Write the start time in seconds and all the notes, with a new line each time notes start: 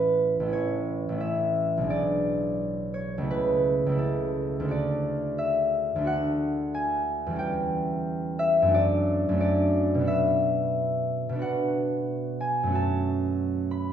Already playing: A1 A3 C#4 E4 A4 B4
0.40 A1 A3
0.46 C#4 E4
0.53 C#5
1.09 A1 A3
1.14 C#4 E4
1.20 E5
1.77 B1 G#3
1.84 D4 G#4
1.90 D5
2.94 C#5
3.18 C#2 A3
3.24 E4
3.31 B4
3.86 C#2 A3
3.92 E4
3.98 A4
4.60 D2 A3
4.65 D4 F#4
4.71 D5
5.38 E5
5.96 D2 A3
6.01 D4 F#4
6.07 F#5
6.74 G#5
7.26 E2 G3
7.33 C#4 G4
7.39 G5
8.39 E5
8.62 F#2 A3
8.68 D4 F#4
8.74 D5
9.29 F#2 A3
9.34 D4 F#4
9.41 D5
9.95 B2
9.99 B3 D4
10.04 F#4 E5
11.29 B2 B3
11.35 D4 F#4
11.42 F#5
12.40 G#5
12.63 F#2 A3
12.69 C#4 F#4
12.75 A5
13.71 B5